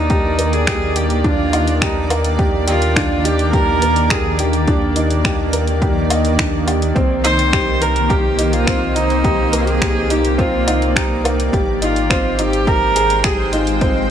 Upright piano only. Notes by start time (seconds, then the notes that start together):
Already playing: D4 D#4 G4 A#4
0.10 G4
0.38 A#4
0.67 G4
0.96 G4
1.24 D4
1.53 D#4
1.82 G4
2.10 A#4
2.39 G4
2.67 G4
2.96 D4
3.25 D#4
3.54 G4
3.82 A#4
4.11 G4
4.40 G4
4.68 D4
4.96 D#4
5.25 G4
5.53 A#4
5.82 G4
6.10 D#5
6.39 D4
6.67 G4
6.95 C4
7.24 D#4
7.52 G4
7.81 A#4
8.10 G4
8.39 D#4
8.67 C4
8.95 D#4
9.24 G4
9.53 A#4
9.81 G4
10.10 D#4
10.38 C4
10.67 D#4
10.96 G4
11.25 A#4
11.53 G4
11.82 D#4
12.10 C4
12.39 D#4
12.67 G4
12.96 G#4
13.25 G4
13.53 D#4
13.81 C4